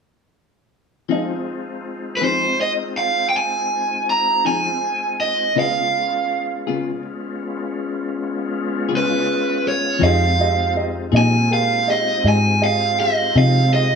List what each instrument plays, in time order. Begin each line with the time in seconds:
1.09 clean electric guitar F3 C4 D#4 G#4, upright piano F3 F4 G#4 D#5, tonewheel organ G#3 C4 D#4 F4
2.17 overdriven electric guitar B4
2.21 clean electric guitar F3 C4 D#4 G#4, overdriven electric guitar C5
2.61 overdriven electric guitar D#5
2.97 overdriven electric guitar F5
3.29 overdriven electric guitar G5
3.37 overdriven electric guitar G#5
4.10 overdriven electric guitar A#5
4.45 clean electric guitar F3 C4 D#4 G#4, overdriven electric guitar G#5
5.20 overdriven electric guitar D#5
5.56 clean electric guitar C#3 B3 F4 G#4, upright piano C#3 F4 B4 D#5, tonewheel organ G#3 B3 C#4 F4, overdriven electric guitar F5
6.67 clean electric guitar C#3 B3 F4 G#4
8.89 clean electric guitar C#3 B3 F4 G#4
8.97 overdriven electric guitar B4
9.68 overdriven electric guitar C#5
9.99 fingered electric bass F2, clean electric guitar F3 C4 D#4 G#4, tonewheel organ G#3 C4 D#4 F4, upright piano G4 D#5
10.03 upright piano G#4, overdriven electric guitar F5
10.40 upright piano G4 G#4 D#5
10.76 upright piano G4 G#4 D#5
11.12 fingered electric bass A#2, clean electric guitar F3 C4 D#4 G#4, upright piano G4 G#4 D#5
11.17 overdriven electric guitar G#5
11.50 upright piano G4 G#4 A#4, overdriven electric guitar F5
11.87 upright piano G4 G#4 D#5, overdriven electric guitar D#5
12.24 fingered electric bass G#2, upright piano G4 G#4 D#5
12.28 overdriven electric guitar G#5
12.60 upright piano G4 G#4 D#5, overdriven electric guitar F5
12.99 upright piano G4 G#4 F5, overdriven electric guitar D#5
13.36 fingered electric bass C3, clean electric guitar F3 C4 D#4 G#4, upright piano G4 G#4 D#5, overdriven electric guitar F5
13.73 upright piano G4 G#4 D#5, overdriven electric guitar D#5